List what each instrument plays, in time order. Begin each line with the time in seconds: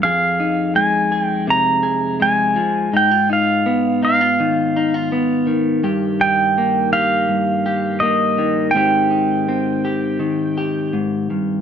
0.03 clean electric guitar F2 G#4, pedal steel guitar F5
0.40 clean electric guitar D#4
0.75 clean electric guitar G#3, pedal steel guitar G#5
1.12 clean electric guitar G#4
1.24 pedal steel guitar G5
1.47 clean electric guitar C3, pedal steel guitar A#5
1.83 clean electric guitar G#4
2.20 clean electric guitar G#3, pedal steel guitar G#5
2.56 clean electric guitar F3
2.93 clean electric guitar G#2 D#4, pedal steel guitar G5
3.11 clean electric guitar F4
3.30 clean electric guitar D#4, pedal steel guitar F5
3.66 clean electric guitar B3
4.03 clean electric guitar D#4, pedal steel guitar F5
4.21 clean electric guitar F4
4.40 clean electric guitar D#3
4.76 clean electric guitar D#4
4.94 clean electric guitar F4
5.12 clean electric guitar B3
5.47 clean electric guitar D#3
5.83 clean electric guitar G2 G4
6.21 clean electric guitar D#4, pedal steel guitar G5
6.58 clean electric guitar A#3
6.93 clean electric guitar G4, pedal steel guitar F5
7.28 clean electric guitar G2
7.66 clean electric guitar G4
8.00 clean electric guitar A#3, pedal steel guitar D#5
8.38 clean electric guitar D#3
8.71 clean electric guitar G#2, pedal steel guitar G5
8.75 clean electric guitar D#3 C4 D#4 G4
9.11 clean electric guitar D#4
9.48 clean electric guitar C4
9.85 clean electric guitar G4
10.19 clean electric guitar D#3
10.58 clean electric guitar G4
10.93 clean electric guitar G#2
11.30 clean electric guitar G2